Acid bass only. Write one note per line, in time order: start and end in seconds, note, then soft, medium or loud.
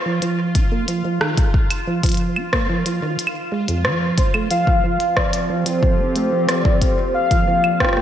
0.06 0.20 F3 medium
0.22 0.57 F3 medium
0.55 0.64 F4 loud
0.72 0.86 A#3 medium
0.88 1.03 F3 medium
1.05 1.19 F3 medium
1.21 1.36 D#3 medium
1.87 2.02 F3 medium
2.04 2.38 F3 medium
2.37 2.45 F4 loud
2.53 2.68 A#3 medium
2.69 2.84 F3 medium
2.86 3.00 F3 medium
3.02 3.17 D#3 medium
3.52 3.67 G#3 loud
3.68 3.86 F2 loud
3.85 4.19 F3 loud
4.18 4.27 F4 medium
4.34 4.49 A3 medium
4.51 4.65 F3 medium
4.67 4.82 F3 medium
4.84 4.98 F3 medium
5.50 5.64 F3 medium
5.66 6.01 F3 medium
5.99 6.08 F4 loud
6.16 6.30 A3 medium
6.32 6.47 F3 medium
6.49 6.63 F3 medium
6.65 6.80 F3 medium
7.31 7.45 F3 medium
7.47 7.82 F3 medium
7.80 7.89 F4 loud
7.97 8.02 A#3 medium